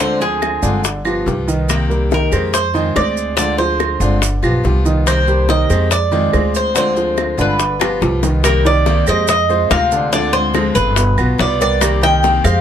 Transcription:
Already playing: D2
0.00 D3 G#3 C4 D4 F4 C5 D5
0.20 F3 F4 G#4, high bongo, maracas
0.42 high bongo, claves, maracas
0.62 G1 D3 G#3 C4 D4 F4 D5, high bongo, maracas
0.84 muted steel-string acoustic guitar stroke, high bongo, maracas
1.05 F3 B3 F4 G4, high bongo, claves, maracas
1.26 C2 F3 G3 B3 F4 G4, high bongo, low bongo, maracas
1.48 D#3 D#4 D#5, maracas
1.68 C3 D#3 A#3 C4 G4, high bongo, claves, maracas
1.90 G3 G4 A#4, high bongo, maracas
2.11 D#3 D#4 A#4 D#5, high bongo, maracas
2.32 F2 D#3 G#3 A#3 C4 G4 G#4 C5, high bongo, claves, maracas
2.53 C5, muted steel-string acoustic guitar stroke, high bongo, maracas
2.74 D#3 G#3 C4 D#4 F4 D#5, high bongo, maracas
2.96 D2 G#3 C4 F4 G#4 C5 D5, high bongo, low bongo, claves, maracas
3.17 maracas
3.37 D3 G#3 C4 D4 F4 D5, high bongo, maracas
3.58 F3 F4 G#4 C5, high bongo, maracas
3.80 high bongo, claves, maracas
4.00 G1 D3 G#3 C4 D4 F4 D5, high bongo, maracas
4.22 muted steel-string acoustic guitar stroke, high bongo, maracas
4.43 B1 F3 B3 F4 G4, high bongo, claves, maracas
4.64 C2 F3 G3 B3 F4 G4, high bongo, low bongo, maracas
4.85 D#3 D#4 D#5, maracas
5.06 C3 D#3 A#3 C4 G4 C5, high bongo, claves, maracas
5.27 G3 G4 A#4, high bongo, maracas
5.49 D#3 D#4 D#5, high bongo, maracas
5.70 F2 D#3 G#3 A#3 C4 G4 G#4 C5, high bongo, claves, maracas
5.91 D5, muted steel-string acoustic guitar stroke, high bongo, maracas
6.12 D#3 G#3 C4 D#4 F4 D#5, high bongo, maracas
6.33 D2 G#3 C4 F4 G#4 C5, high bongo, low bongo, claves, maracas
6.55 C5, maracas
6.75 D3 G#3 C4 D4 F4 C5 D5, high bongo, maracas
6.96 F3 F4 G#4, high bongo, maracas
7.17 high bongo, claves, maracas
7.37 G1 D3 G#3 C4 D4 F4 B4 D5, high bongo, maracas
7.59 muted steel-string acoustic guitar stroke, high bongo, maracas
7.79 F3 B3 F4 G4, high bongo, claves, maracas
8.01 C2 F3 G3 B3 F4 G4, high bongo, maracas
8.23 D#3 D#4 D#5, low bongo, maracas
8.43 C3 D#3 G3 A#3 C4 G4 A#4, high bongo, claves, maracas
8.65 D#3 A#3 C4 D#4 G4 D5, maracas
8.86 C3 D#3 A#3 C4 G4, high bongo, maracas
9.07 F2 G#3 A#3 C4 G4 G#4 C5 D#5, claves, maracas
9.28 D#5, muted steel-string acoustic guitar stroke, high bongo, maracas
9.49 G#3 C4 F4 G#4 C5, maracas
9.70 D2 C3 G#3 C4 F4 F5, high bongo, low bongo, claves, maracas
9.91 D3 D4 D5, maracas
10.12 D3 G#3 C4 D4 F4 D5, high bongo, maracas
10.33 G#3 C4 F4 C5, high bongo, maracas
10.54 D3 F3 G#3 C4 F4 G#4, high bongo, claves, maracas
10.75 G1 G#3 C4 F4 B4, high bongo, maracas
10.96 B2 B3 B4, muted steel-string acoustic guitar stroke, high bongo, maracas
11.17 B1 B2 B3 F4 B4, high bongo, claves, maracas
11.38 C2 G3 B3 F4 D5, high bongo, low bongo, maracas
11.60 G3 G4 A#4 D5, maracas
11.80 C3 D#3 G3 A#3 C4 G4 A#4, high bongo, claves, maracas
12.01 D#3 A#3 C4 D#4 G4 D#5 G5, maracas
12.23 C3 D#3 A#3 C4 G4, high bongo, maracas
12.44 F2 G#3 A#3 C4 G4 G#4 C5 F5, claves, maracas

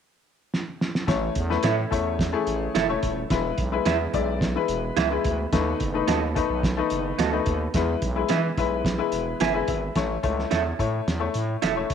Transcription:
0.54 snare
0.81 snare
0.95 snare
1.07 A1 E3 A3 C#4 E4 C#5, kick, snare, closed hi-hat
1.35 E2, kick, closed hi-hat
1.50 A3 E4 B4, snare
1.63 A2 E4 A4 C#5 E5, snare, closed hi-hat
1.91 E2 A3 E4 C#5, kick, closed hi-hat
2.19 kick, snare, closed hi-hat
2.33 A3 E4 G#4
2.47 A1, closed hi-hat
2.75 E1 E4 A4 C#5 E5, snare, closed hi-hat
2.89 A3 E4 C#5
3.03 D#1, kick, closed hi-hat
3.30 E1 E3 G#3 B3 E4 B4, kick, snare, closed hi-hat
3.58 B1, kick, closed hi-hat
3.72 G#3 E4 B4
3.85 E2 E4 G#4 B4 E5, snare, closed hi-hat
4.13 B1 G#3 E4 D5, kick, closed hi-hat
4.41 kick, snare, closed hi-hat
4.55 G#3 E4 B4
4.68 E1, closed hi-hat
4.97 C#2 E4 G#4 B4 E5, snare, closed hi-hat
5.11 G#3 E4 B4
5.24 D2, kick, closed hi-hat
5.51 D#2 D#3 A3 D#4 B4, kick, snare, closed hi-hat
5.80 F#1, kick, closed hi-hat
5.94 A3 D#4 B4
6.07 D#2 B3 F#4 A4 D#5, snare, closed hi-hat
6.35 A3 D#4 B4, kick, closed hi-hat
6.50 B1
6.63 kick, snare, closed hi-hat
6.77 A3 D#4 B4
6.90 F#1, closed hi-hat
7.18 D2 B3 F#4 A4 D#5, snare, closed hi-hat
7.32 A3 D#4 B4
7.46 D#2, kick, closed hi-hat
7.74 E2 E3 G#3 E4 B4, kick, snare, closed hi-hat
8.02 B1, kick, closed hi-hat
8.16 G#3 E4 B4
8.29 E3 E4 G#4 B4 E5, snare, closed hi-hat
8.58 B1 G#3 E4 B4, kick, closed hi-hat
8.85 kick, snare, closed hi-hat
8.98 G#3 E4 B4
9.12 E1, closed hi-hat
9.40 G1 E4 G#4 B4 E5 G#5, snare, closed hi-hat
9.53 G#3 E4 B4
9.68 G#1 E5, kick, closed hi-hat
9.96 A1 A3 E4 C#5, kick, snare, closed hi-hat
10.23 C#2 A3 E4 C#5, kick, closed hi-hat
10.39 snare
10.51 E2 E4 A4 C#5 E5, snare, closed hi-hat
10.79 A2 A3 E4 C#5, kick, closed hi-hat
11.08 E2, snare, closed hi-hat
11.19 A3 E4 C#5
11.34 A2, closed hi-hat
11.62 E1 E4 A4 C#5 E5, snare, closed hi-hat
11.75 A3 E4 C#5
11.90 D#1, kick, closed hi-hat

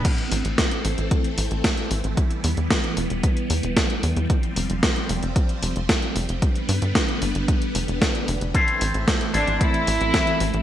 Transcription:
0.05 E3 A3 C4, kick, closed hi-hat, crash
0.18 closed hi-hat
0.32 A1, open hi-hat
0.45 A1, closed hi-hat
0.58 kick, snare, closed hi-hat
0.71 closed hi-hat
0.85 A1, open hi-hat
0.98 A1, closed hi-hat
1.11 kick, closed hi-hat
1.24 closed hi-hat
1.38 A1, open hi-hat
1.51 A1, closed hi-hat
1.64 kick, snare, closed hi-hat
1.78 closed hi-hat
1.91 A1, open hi-hat
2.04 A1, closed hi-hat
2.17 G3 B3, kick, closed hi-hat
2.31 closed hi-hat
2.44 E2, open hi-hat
2.57 E2, closed hi-hat
2.70 kick, snare, closed hi-hat
2.84 closed hi-hat
2.97 E1, open hi-hat
3.10 E1, closed hi-hat
3.24 kick, closed hi-hat
3.37 closed hi-hat
3.50 E2, open hi-hat
3.63 E1, closed hi-hat
3.77 kick, snare, closed hi-hat
3.90 closed hi-hat
4.03 E2, open hi-hat
4.16 E2, closed hi-hat
4.30 F3 C4, kick, closed hi-hat
4.43 closed hi-hat
4.56 F1, open hi-hat
4.70 F1, closed hi-hat
4.83 kick, snare, closed hi-hat
4.96 closed hi-hat
5.09 F1, open hi-hat
5.23 F1, closed hi-hat
5.36 kick, closed hi-hat
5.49 closed hi-hat
5.63 F1, open hi-hat
5.76 F1, closed hi-hat
5.89 kick, snare, closed hi-hat
6.02 closed hi-hat
6.16 F1, open hi-hat
6.29 F1, closed hi-hat
6.42 D3 G3 B3, kick, closed hi-hat
6.55 closed hi-hat
6.69 G2, open hi-hat
6.82 G2, closed hi-hat
6.95 kick, snare, closed hi-hat
7.09 closed hi-hat
7.22 G1, open hi-hat
7.35 G1, closed hi-hat
7.48 kick, closed hi-hat
7.62 closed hi-hat
7.75 F1, open hi-hat
7.88 F1, closed hi-hat
8.01 kick, snare, closed hi-hat
8.15 closed hi-hat
8.28 F1, open hi-hat
8.41 F1, closed hi-hat
8.54 A2 E3 A3 C4 E4 A4 C5, kick, closed hi-hat
8.68 closed hi-hat
8.81 A1, open hi-hat
8.94 A1, closed hi-hat
9.08 kick, snare, closed hi-hat
9.21 closed hi-hat
9.34 A1 A2 C4 D4 E4 A4 C5, open hi-hat
9.47 A1, closed hi-hat
9.61 E4, kick, closed hi-hat
9.74 closed hi-hat
9.87 A1, open hi-hat
10.01 A1, closed hi-hat
10.14 kick, snare, closed hi-hat
10.27 closed hi-hat
10.40 A1, open hi-hat
10.54 A1, closed hi-hat

